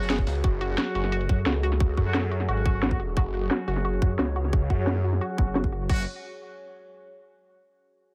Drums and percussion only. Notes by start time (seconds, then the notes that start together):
0.01 snare
0.10 snare, closed hi-hat, ride
0.18 kick, snare
0.27 snare, closed hi-hat, ride
0.35 ride
0.44 kick, closed hi-hat
0.61 closed hi-hat
0.78 snare, closed hi-hat
0.95 closed hi-hat
1.04 snare
1.12 closed hi-hat
1.21 closed hi-hat
1.29 kick, closed hi-hat
1.46 snare, closed hi-hat
1.63 closed hi-hat
1.72 snare
1.80 kick, closed hi-hat
1.97 kick, closed hi-hat
2.14 snare, closed hi-hat
2.23 snare
2.32 closed hi-hat
2.40 snare
2.49 closed hi-hat
2.57 closed hi-hat
2.66 kick, closed hi-hat
2.83 snare, closed hi-hat
2.91 kick, snare
3.00 closed hi-hat
3.17 kick, closed hi-hat
3.34 closed hi-hat
3.51 snare, closed hi-hat
3.68 closed hi-hat
3.76 snare
3.85 closed hi-hat
3.93 closed hi-hat
4.02 kick, closed hi-hat
4.19 snare, closed hi-hat
4.36 closed hi-hat
4.44 snare
4.53 kick, closed hi-hat
4.70 kick, closed hi-hat
4.87 snare, closed hi-hat
4.96 snare, closed hi-hat
5.04 closed hi-hat
5.13 snare, closed hi-hat
5.21 closed hi-hat
5.30 closed hi-hat
5.38 kick, snare
5.47 closed hi-hat
5.55 snare, closed hi-hat
5.64 kick, snare
5.72 closed hi-hat
5.90 kick, crash